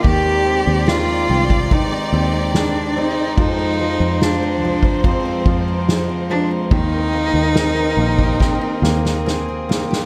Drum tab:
RD |x-x-x-x-x-x-x-x-|x-x-x-x-x-x-x-x-|x-x-x-x---------|
SD |----o-------o---|----o-------o---|----o---o-ooo-oo|
BD |o------oo-------|o------oo-o-----|o------oo-------|